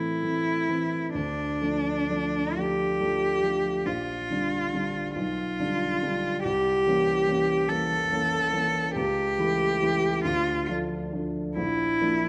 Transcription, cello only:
Already playing: E4
1.15 D4
2.58 G4
3.86 F4
5.15 F4
6.43 G4
7.69 A4
8.96 G4
10.24 F4
11.57 E4

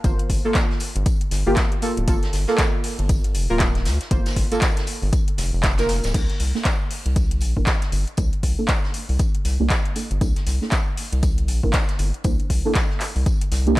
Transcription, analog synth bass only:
0.04 G1
0.30 G1
0.96 G1
1.31 G1
1.46 G1
1.97 D1
2.08 G1
2.33 G1
2.99 G1
3.35 F1
3.50 D1
3.86 D2
4.11 G1
4.36 G1
5.02 G1
5.38 F1
5.53 F1
6.04 D1
6.14 C2
6.40 C2
7.06 C2
7.42 A#1
7.57 G1
7.92 G1
8.18 C2
8.43 C2
9.09 C2
9.45 C2
9.60 C2
10.11 G1
10.21 C2
10.47 C2
11.13 C2
11.48 A#1
11.63 G1
11.99 G1
12.25 C2
12.50 C2
13.16 C2
13.52 C2

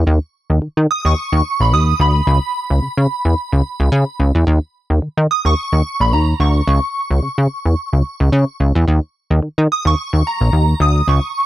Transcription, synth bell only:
0.91 D#6
1.06 C#6
1.61 B5
1.74 D#6
2.01 B5
5.31 D#6
5.46 C#6
6.01 B5
6.13 A#5
6.41 C#6
9.72 D#6
9.87 C#6
10.27 A#5
10.82 D#6
11.09 C#6

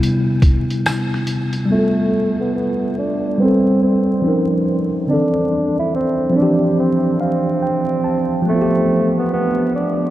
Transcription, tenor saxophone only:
1.72 A3
2.41 B3
2.55 B3
2.98 D4
3.41 C4
3.83 C4
5.10 D4
5.79 E4
5.95 C4
6.37 D4
6.79 C4
7.21 C4
8.49 A3
9.18 B3
9.33 B3
9.76 D4

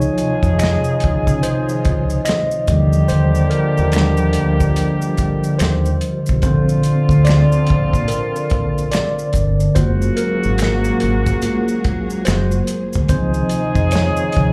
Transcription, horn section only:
Already playing: F3 G#3 D#4 G#4
2.68 D3 G3 A#3 G4
6.43 D3 F3 C4 F4
9.75 C#3 F#3 A#3 F#4
13.08 F3 G#3 D#4 G#4

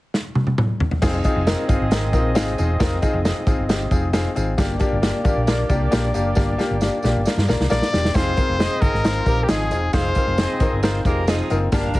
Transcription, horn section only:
1.03 C4 G#4 D#5
4.57 A#3 G4 D5
8.14 C4 G#4 F5
8.59 C4 G#4 D#5
9.04 G#3 F4 C5
9.26 A#3 G4 A#4
9.49 F3 D#4 G#4
9.93 C4 G#4 F5
10.38 C4 G#4 D#5
10.83 G#3 F4 C5
11.05 A#3 G4 A#4
11.28 F3 D#4 G#4
11.72 D4 A#4 F5

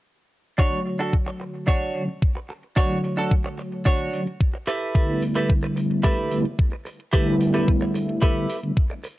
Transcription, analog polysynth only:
0.58 F#3 A3 F#4
1.94 D3 F#3 A3 C#4 F#4
2.75 D3 F#3 A3 F#4
4.13 D3 F#3 A3 C#4 F#4
4.94 D3 G3 A3 B3 E4
6.31 D3 G3 A3 B3 E4
7.12 D3 G3 A3 B3 E4
8.63 D3 G3 A3 B3 D4

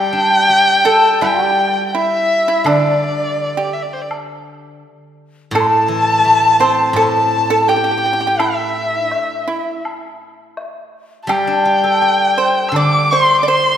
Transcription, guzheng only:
Already playing: G3
0.13 D4
0.50 G4
0.86 A4
1.21 G3
2.64 D3
5.51 A2
5.88 E3
6.25 A3
6.59 C4
6.93 A2
11.27 G3
11.47 D4
11.65 G4
11.84 A4
12.02 D5
12.72 D3

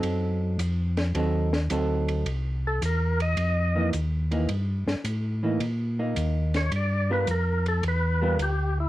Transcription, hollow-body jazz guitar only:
Already playing: F#3 C4 D#4 A4
1.14 F#3 C4 D#4 A4
1.70 F#3 C4 D#4 A4
3.75 E3 A#3 D#4
4.31 E3 A#3 D#4
5.43 E3 A#3 D#4
5.99 A#3 D#4
7.10 G3 B3 F4 A#4
8.22 G3 B3 F4 A#4

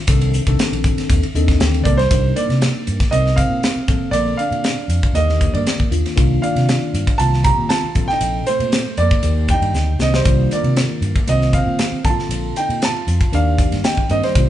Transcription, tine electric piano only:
0.08 D#3 C4 D4 A4
0.47 D#3 C4 D4 A4
1.35 D#3 C4 D4 A4 D#5
1.60 G5
1.86 A5
2.11 F3 D4 D#4 A#4
3.12 F3 C4 D#4 A#4
3.88 D3 A#3 C4 A4
5.15 D3 D#3 A#3 G4
5.91 D#3 A#3 D4 F4
6.16 D#3 A#3 D4 F4
7.18 D#3 A#3 C4 F4
7.94 A#2 C3 C4 A4
9.23 D#3 A#3 G4 D5
9.99 D#3 A#3 D4 G4
10.25 D#3 A#3 D4 F4
11.27 D#3 A#3 C4 F4
12.04 D3 A#3 C4 A4
13.33 D#3 A#3 D4 G4
14.10 D#3 A#3 D4 G4
14.36 D#3 A#3 D4 F4

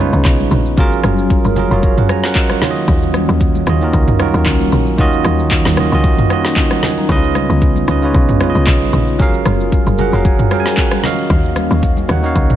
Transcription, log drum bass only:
Already playing: B1
0.13 C#2
0.25 B1
0.51 A#1
0.78 F#1
1.04 F#1
1.45 F#1
1.71 F1
2.88 D#2
3.29 D#2
3.67 D#2
3.93 C#2
4.34 D#2
4.46 C#2
4.72 A#1
4.98 D#2
5.25 D#2
5.66 D#2
5.92 C#2
7.09 C#2
7.50 C#2
7.88 C#2
8.14 B1
8.55 C#2
8.67 B1
8.93 A#1
9.19 F#1
9.46 F#1
9.87 F#1
10.13 F1
11.30 D#2
11.71 D#2
12.09 D#2
12.36 C#2

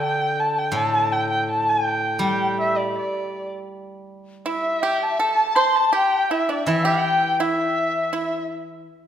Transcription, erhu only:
0.03 G5
0.40 A5
0.58 G5
0.76 A5
1.12 G5
1.30 G5
1.51 A5
1.69 G5
2.23 G5
2.60 E5
2.77 D5
2.98 D5
4.48 E5
4.82 G5
5.02 A5
5.21 A5
5.55 C6
5.76 A5
5.93 G5
6.30 E5
6.49 D5
6.67 E5
6.86 G5
7.40 E5

